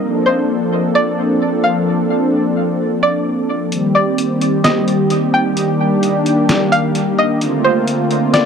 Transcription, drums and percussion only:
3.72 closed hi-hat
4.18 closed hi-hat
4.41 closed hi-hat
4.64 snare, closed hi-hat
4.88 closed hi-hat
5.10 closed hi-hat
5.57 closed hi-hat
6.03 closed hi-hat
6.26 closed hi-hat
6.49 snare, closed hi-hat
6.72 closed hi-hat
6.95 closed hi-hat
7.41 closed hi-hat
7.88 closed hi-hat
8.11 closed hi-hat
8.34 snare, closed hi-hat

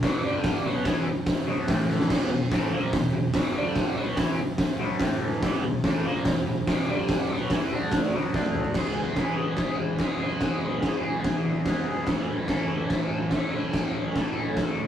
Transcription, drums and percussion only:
0.03 kick, snare, open hi-hat
0.44 kick, snare, open hi-hat
0.85 kick, snare, open hi-hat
1.26 kick, snare, open hi-hat
1.68 kick, snare, open hi-hat
1.89 snare
2.00 snare
2.10 kick, snare, open hi-hat, crash
2.52 kick, snare, open hi-hat
2.93 kick, snare, open hi-hat
3.34 kick, snare, open hi-hat
3.76 kick, snare, open hi-hat
4.17 kick, snare, open hi-hat
4.58 kick, snare, open hi-hat
5.00 kick, snare, open hi-hat
5.43 kick, snare, open hi-hat
5.84 kick, snare, open hi-hat
6.25 kick, snare, open hi-hat
6.67 kick, snare, open hi-hat
7.09 kick, snare, open hi-hat
7.50 kick, snare, open hi-hat
7.92 kick, snare, open hi-hat
8.34 kick, snare
8.45 high tom
8.55 mid tom
8.65 floor tom
8.74 kick, snare, crash
9.16 kick, snare, crash
9.57 kick, snare, crash
9.99 kick, snare, crash
10.41 kick, snare, crash
10.83 kick, snare, crash
11.24 kick, snare, crash
11.66 kick, snare, crash
12.07 kick, snare, crash
12.48 kick, snare, crash
12.90 kick, snare, crash
13.31 kick, snare, crash
13.73 kick, snare, crash
14.16 kick, snare, crash
14.57 kick, snare, crash

